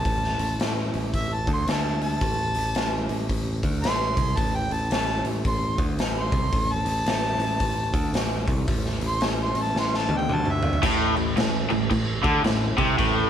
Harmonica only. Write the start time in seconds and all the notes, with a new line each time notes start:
Already playing: A5
1.15 E5
1.34 A5
1.53 C6
1.69 A5
2.04 A5
3.83 C6
4.37 A5
4.56 G5
4.73 A5
4.93 A5
5.48 C6
6.18 C6
6.72 A5
9.08 C6
9.43 C6
9.62 A5
9.79 C6
9.97 A5
10.17 G5
10.34 A5
10.52 E5